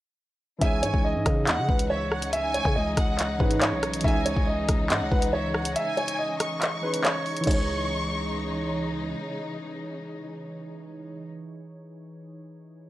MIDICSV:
0, 0, Header, 1, 7, 480
1, 0, Start_track
1, 0, Key_signature, 4, "minor"
1, 0, Tempo, 428571
1, 689, Time_signature, 4, 2, 24, 8
1, 14445, End_track
2, 0, Start_track
2, 0, Title_t, "Violin section"
2, 0, Program_c, 0, 48
2, 690, Note_on_c, 0, 80, 115
2, 1141, Note_off_c, 0, 80, 0
2, 1649, Note_on_c, 0, 78, 92
2, 2100, Note_off_c, 0, 78, 0
2, 2128, Note_on_c, 0, 76, 84
2, 2356, Note_off_c, 0, 76, 0
2, 2370, Note_on_c, 0, 78, 85
2, 2598, Note_off_c, 0, 78, 0
2, 2609, Note_on_c, 0, 80, 120
2, 3286, Note_off_c, 0, 80, 0
2, 3330, Note_on_c, 0, 78, 88
2, 4006, Note_off_c, 0, 78, 0
2, 4528, Note_on_c, 0, 80, 114
2, 4980, Note_off_c, 0, 80, 0
2, 5490, Note_on_c, 0, 78, 94
2, 5941, Note_off_c, 0, 78, 0
2, 5971, Note_on_c, 0, 76, 80
2, 6198, Note_off_c, 0, 76, 0
2, 6209, Note_on_c, 0, 78, 84
2, 6437, Note_off_c, 0, 78, 0
2, 6450, Note_on_c, 0, 80, 116
2, 7126, Note_off_c, 0, 80, 0
2, 7172, Note_on_c, 0, 85, 79
2, 8326, Note_off_c, 0, 85, 0
2, 8369, Note_on_c, 0, 85, 96
2, 9764, Note_off_c, 0, 85, 0
2, 14445, End_track
3, 0, Start_track
3, 0, Title_t, "Grand piano"
3, 0, Program_c, 1, 0
3, 689, Note_on_c, 1, 76, 114
3, 884, Note_off_c, 1, 76, 0
3, 925, Note_on_c, 1, 73, 80
3, 1122, Note_off_c, 1, 73, 0
3, 1169, Note_on_c, 1, 75, 90
3, 1846, Note_off_c, 1, 75, 0
3, 1885, Note_on_c, 1, 71, 67
3, 2082, Note_off_c, 1, 71, 0
3, 2128, Note_on_c, 1, 73, 87
3, 2579, Note_off_c, 1, 73, 0
3, 2607, Note_on_c, 1, 76, 108
3, 2803, Note_off_c, 1, 76, 0
3, 2848, Note_on_c, 1, 73, 79
3, 3043, Note_off_c, 1, 73, 0
3, 3085, Note_on_c, 1, 75, 90
3, 3764, Note_off_c, 1, 75, 0
3, 3808, Note_on_c, 1, 71, 73
3, 4003, Note_off_c, 1, 71, 0
3, 4050, Note_on_c, 1, 73, 84
3, 4501, Note_off_c, 1, 73, 0
3, 4529, Note_on_c, 1, 76, 107
3, 4724, Note_off_c, 1, 76, 0
3, 4766, Note_on_c, 1, 73, 81
3, 4962, Note_off_c, 1, 73, 0
3, 5009, Note_on_c, 1, 75, 99
3, 5686, Note_off_c, 1, 75, 0
3, 5729, Note_on_c, 1, 71, 79
3, 5924, Note_off_c, 1, 71, 0
3, 5969, Note_on_c, 1, 73, 86
3, 6420, Note_off_c, 1, 73, 0
3, 6449, Note_on_c, 1, 76, 104
3, 6644, Note_off_c, 1, 76, 0
3, 6688, Note_on_c, 1, 73, 82
3, 6884, Note_off_c, 1, 73, 0
3, 6927, Note_on_c, 1, 75, 91
3, 7605, Note_off_c, 1, 75, 0
3, 7648, Note_on_c, 1, 71, 74
3, 7843, Note_off_c, 1, 71, 0
3, 7889, Note_on_c, 1, 73, 93
3, 8340, Note_off_c, 1, 73, 0
3, 8368, Note_on_c, 1, 73, 88
3, 9764, Note_off_c, 1, 73, 0
3, 14445, End_track
4, 0, Start_track
4, 0, Title_t, "Synth keys"
4, 0, Program_c, 2, 88
4, 656, Note_on_c, 2, 52, 66
4, 674, Note_on_c, 2, 61, 67
4, 693, Note_on_c, 2, 63, 62
4, 711, Note_on_c, 2, 68, 69
4, 730, Note_on_c, 2, 73, 71
4, 869, Control_c, 2, 64, 127
4, 3748, Note_off_c, 2, 52, 0
4, 3757, Note_off_c, 2, 61, 0
4, 3766, Note_off_c, 2, 63, 0
4, 3775, Note_off_c, 2, 68, 0
4, 3785, Note_off_c, 2, 73, 0
4, 3786, Note_on_c, 2, 52, 53
4, 3795, Note_on_c, 2, 61, 46
4, 3805, Note_on_c, 2, 63, 50
4, 3814, Note_on_c, 2, 68, 48
4, 3823, Note_on_c, 2, 73, 60
4, 4479, Note_off_c, 2, 52, 0
4, 4493, Note_on_c, 2, 52, 63
4, 4499, Note_off_c, 2, 61, 0
4, 4512, Note_on_c, 2, 61, 61
4, 4516, Note_off_c, 2, 63, 0
4, 4530, Note_on_c, 2, 63, 63
4, 4531, Note_off_c, 2, 68, 0
4, 4536, Note_off_c, 2, 73, 0
4, 4546, Control_c, 2, 64, 0
4, 4548, Note_on_c, 2, 68, 62
4, 4567, Note_on_c, 2, 73, 80
4, 4774, Control_c, 2, 64, 127
4, 7586, Note_off_c, 2, 52, 0
4, 7596, Note_off_c, 2, 61, 0
4, 7604, Note_off_c, 2, 63, 0
4, 7614, Note_off_c, 2, 68, 0
4, 7623, Note_off_c, 2, 73, 0
4, 7629, Note_on_c, 2, 52, 47
4, 7639, Note_on_c, 2, 61, 47
4, 7648, Note_on_c, 2, 63, 52
4, 7657, Note_on_c, 2, 68, 44
4, 7666, Note_on_c, 2, 73, 55
4, 8281, Note_off_c, 2, 52, 0
4, 8295, Note_on_c, 2, 52, 86
4, 8330, Note_off_c, 2, 63, 0
4, 8344, Note_on_c, 2, 63, 78
4, 8364, Note_off_c, 2, 61, 0
4, 8373, Note_off_c, 2, 68, 0
4, 8378, Note_off_c, 2, 73, 0
4, 8382, Control_c, 2, 64, 0
4, 8394, Note_on_c, 2, 68, 78
4, 8443, Note_on_c, 2, 73, 95
4, 8552, Control_c, 2, 64, 127
4, 12548, Note_off_c, 2, 52, 0
4, 12597, Note_off_c, 2, 63, 0
4, 12647, Note_off_c, 2, 68, 0
4, 12696, Note_off_c, 2, 73, 0
4, 14445, End_track
5, 0, Start_track
5, 0, Title_t, "String section"
5, 0, Program_c, 3, 48
5, 689, Note_on_c, 3, 49, 82
5, 689, Note_on_c, 3, 52, 80
5, 689, Note_on_c, 3, 56, 77
5, 690, Note_on_c, 3, 63, 95
5, 8324, Note_off_c, 3, 49, 0
5, 8324, Note_off_c, 3, 52, 0
5, 8324, Note_off_c, 3, 56, 0
5, 8325, Note_off_c, 3, 63, 0
5, 8370, Note_on_c, 3, 49, 85
5, 8370, Note_on_c, 3, 63, 95
5, 8371, Note_on_c, 3, 52, 77
5, 8371, Note_on_c, 3, 56, 78
5, 12623, Note_off_c, 3, 49, 0
5, 12623, Note_off_c, 3, 63, 0
5, 12624, Note_off_c, 3, 52, 0
5, 12625, Note_off_c, 3, 56, 0
5, 14445, End_track
6, 0, Start_track
6, 0, Title_t, "808-style bass"
6, 0, Program_c, 4, 38
6, 689, Note_on_c, 4, 37, 109
6, 929, Note_on_c, 4, 44, 98
6, 946, Note_off_c, 4, 37, 0
6, 1043, Note_off_c, 4, 44, 0
6, 1050, Note_on_c, 4, 37, 102
6, 1290, Note_on_c, 4, 44, 100
6, 1306, Note_off_c, 4, 37, 0
6, 1403, Note_off_c, 4, 44, 0
6, 1409, Note_on_c, 4, 49, 108
6, 1650, Note_on_c, 4, 39, 100
6, 1667, Note_off_c, 4, 49, 0
6, 1771, Note_on_c, 4, 49, 100
6, 1787, Note_off_c, 4, 39, 0
6, 1884, Note_off_c, 4, 49, 0
6, 1890, Note_on_c, 4, 37, 103
6, 2926, Note_off_c, 4, 37, 0
6, 2970, Note_on_c, 4, 49, 105
6, 3084, Note_off_c, 4, 49, 0
6, 3089, Note_on_c, 4, 37, 110
6, 3320, Note_off_c, 4, 37, 0
6, 3328, Note_on_c, 4, 37, 105
6, 3790, Note_off_c, 4, 37, 0
6, 3808, Note_on_c, 4, 44, 106
6, 4170, Note_on_c, 4, 35, 96
6, 4187, Note_off_c, 4, 44, 0
6, 4511, Note_off_c, 4, 35, 0
6, 4528, Note_on_c, 4, 37, 119
6, 4874, Note_off_c, 4, 37, 0
6, 4889, Note_on_c, 4, 37, 103
6, 5235, Note_off_c, 4, 37, 0
6, 5249, Note_on_c, 4, 37, 107
6, 5490, Note_on_c, 4, 44, 101
6, 5507, Note_off_c, 4, 37, 0
6, 5610, Note_on_c, 4, 37, 101
6, 5627, Note_off_c, 4, 44, 0
6, 5724, Note_off_c, 4, 37, 0
6, 5729, Note_on_c, 4, 37, 107
6, 6449, Note_off_c, 4, 37, 0
6, 8369, Note_on_c, 4, 37, 112
6, 10244, Note_off_c, 4, 37, 0
6, 14445, End_track
7, 0, Start_track
7, 0, Title_t, "Drums"
7, 689, Note_on_c, 9, 36, 121
7, 689, Note_on_c, 9, 42, 93
7, 801, Note_off_c, 9, 36, 0
7, 801, Note_off_c, 9, 42, 0
7, 929, Note_on_c, 9, 42, 79
7, 1041, Note_off_c, 9, 42, 0
7, 1050, Note_on_c, 9, 36, 91
7, 1162, Note_off_c, 9, 36, 0
7, 1409, Note_on_c, 9, 36, 100
7, 1410, Note_on_c, 9, 37, 90
7, 1410, Note_on_c, 9, 42, 79
7, 1521, Note_off_c, 9, 36, 0
7, 1522, Note_off_c, 9, 37, 0
7, 1522, Note_off_c, 9, 42, 0
7, 1649, Note_on_c, 9, 39, 115
7, 1650, Note_on_c, 9, 42, 79
7, 1761, Note_off_c, 9, 39, 0
7, 1762, Note_off_c, 9, 42, 0
7, 1889, Note_on_c, 9, 36, 104
7, 2001, Note_off_c, 9, 36, 0
7, 2008, Note_on_c, 9, 42, 74
7, 2120, Note_off_c, 9, 42, 0
7, 2369, Note_on_c, 9, 37, 93
7, 2481, Note_off_c, 9, 37, 0
7, 2489, Note_on_c, 9, 42, 90
7, 2601, Note_off_c, 9, 42, 0
7, 2608, Note_on_c, 9, 42, 90
7, 2720, Note_off_c, 9, 42, 0
7, 2849, Note_on_c, 9, 42, 77
7, 2961, Note_off_c, 9, 42, 0
7, 2969, Note_on_c, 9, 36, 91
7, 3081, Note_off_c, 9, 36, 0
7, 3328, Note_on_c, 9, 37, 90
7, 3328, Note_on_c, 9, 42, 77
7, 3329, Note_on_c, 9, 36, 102
7, 3440, Note_off_c, 9, 37, 0
7, 3440, Note_off_c, 9, 42, 0
7, 3441, Note_off_c, 9, 36, 0
7, 3568, Note_on_c, 9, 39, 70
7, 3569, Note_on_c, 9, 42, 78
7, 3680, Note_off_c, 9, 39, 0
7, 3681, Note_off_c, 9, 42, 0
7, 3809, Note_on_c, 9, 36, 108
7, 3921, Note_off_c, 9, 36, 0
7, 3927, Note_on_c, 9, 42, 74
7, 4039, Note_off_c, 9, 42, 0
7, 4046, Note_on_c, 9, 39, 125
7, 4049, Note_on_c, 9, 42, 78
7, 4158, Note_off_c, 9, 39, 0
7, 4161, Note_off_c, 9, 42, 0
7, 4288, Note_on_c, 9, 37, 92
7, 4288, Note_on_c, 9, 42, 77
7, 4400, Note_off_c, 9, 37, 0
7, 4400, Note_off_c, 9, 42, 0
7, 4407, Note_on_c, 9, 42, 83
7, 4488, Note_off_c, 9, 42, 0
7, 4488, Note_on_c, 9, 42, 66
7, 4528, Note_on_c, 9, 36, 125
7, 4568, Note_off_c, 9, 42, 0
7, 4568, Note_on_c, 9, 42, 52
7, 4640, Note_off_c, 9, 36, 0
7, 4680, Note_off_c, 9, 42, 0
7, 4768, Note_on_c, 9, 42, 80
7, 4880, Note_off_c, 9, 42, 0
7, 4889, Note_on_c, 9, 36, 90
7, 5001, Note_off_c, 9, 36, 0
7, 5248, Note_on_c, 9, 37, 94
7, 5248, Note_on_c, 9, 42, 77
7, 5249, Note_on_c, 9, 36, 104
7, 5360, Note_off_c, 9, 37, 0
7, 5360, Note_off_c, 9, 42, 0
7, 5361, Note_off_c, 9, 36, 0
7, 5489, Note_on_c, 9, 39, 120
7, 5490, Note_on_c, 9, 42, 80
7, 5601, Note_off_c, 9, 39, 0
7, 5602, Note_off_c, 9, 42, 0
7, 5729, Note_on_c, 9, 36, 106
7, 5841, Note_off_c, 9, 36, 0
7, 5848, Note_on_c, 9, 42, 71
7, 5960, Note_off_c, 9, 42, 0
7, 6210, Note_on_c, 9, 37, 95
7, 6322, Note_off_c, 9, 37, 0
7, 6330, Note_on_c, 9, 42, 91
7, 6442, Note_off_c, 9, 42, 0
7, 6449, Note_on_c, 9, 42, 92
7, 6561, Note_off_c, 9, 42, 0
7, 6690, Note_on_c, 9, 42, 49
7, 6802, Note_off_c, 9, 42, 0
7, 6810, Note_on_c, 9, 42, 82
7, 6922, Note_off_c, 9, 42, 0
7, 7169, Note_on_c, 9, 42, 79
7, 7170, Note_on_c, 9, 37, 91
7, 7281, Note_off_c, 9, 42, 0
7, 7282, Note_off_c, 9, 37, 0
7, 7410, Note_on_c, 9, 39, 72
7, 7411, Note_on_c, 9, 42, 80
7, 7522, Note_off_c, 9, 39, 0
7, 7523, Note_off_c, 9, 42, 0
7, 7768, Note_on_c, 9, 42, 72
7, 7880, Note_off_c, 9, 42, 0
7, 7888, Note_on_c, 9, 39, 119
7, 7891, Note_on_c, 9, 42, 77
7, 8000, Note_off_c, 9, 39, 0
7, 8003, Note_off_c, 9, 42, 0
7, 8130, Note_on_c, 9, 46, 55
7, 8242, Note_off_c, 9, 46, 0
7, 8249, Note_on_c, 9, 42, 51
7, 8329, Note_off_c, 9, 42, 0
7, 8329, Note_on_c, 9, 42, 66
7, 8369, Note_on_c, 9, 36, 110
7, 8369, Note_on_c, 9, 49, 88
7, 8410, Note_off_c, 9, 42, 0
7, 8410, Note_on_c, 9, 42, 86
7, 8481, Note_off_c, 9, 36, 0
7, 8481, Note_off_c, 9, 49, 0
7, 8522, Note_off_c, 9, 42, 0
7, 14445, End_track
0, 0, End_of_file